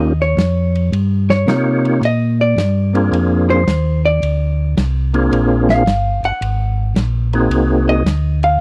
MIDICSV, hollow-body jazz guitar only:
0, 0, Header, 1, 2, 480
1, 0, Start_track
1, 0, Tempo, 548446
1, 1777, Time_signature, 4, 2, 24, 8
1, 7532, End_track
2, 0, Start_track
2, 0, Title_t, "Hollow-body jazz guitar"
2, 0, Program_c, 0, 26
2, 0, Note_on_c, 0, 75, 95
2, 174, Note_off_c, 0, 75, 0
2, 190, Note_on_c, 0, 73, 88
2, 788, Note_off_c, 0, 73, 0
2, 1140, Note_on_c, 0, 73, 90
2, 1743, Note_off_c, 0, 73, 0
2, 1796, Note_on_c, 0, 75, 106
2, 2098, Note_off_c, 0, 75, 0
2, 2111, Note_on_c, 0, 74, 90
2, 2709, Note_off_c, 0, 74, 0
2, 3066, Note_on_c, 0, 72, 89
2, 3509, Note_off_c, 0, 72, 0
2, 3549, Note_on_c, 0, 74, 87
2, 4147, Note_off_c, 0, 74, 0
2, 4991, Note_on_c, 0, 77, 88
2, 5431, Note_off_c, 0, 77, 0
2, 5471, Note_on_c, 0, 78, 100
2, 6067, Note_off_c, 0, 78, 0
2, 6906, Note_on_c, 0, 75, 98
2, 7347, Note_off_c, 0, 75, 0
2, 7386, Note_on_c, 0, 77, 90
2, 7532, Note_off_c, 0, 77, 0
2, 7532, End_track
0, 0, End_of_file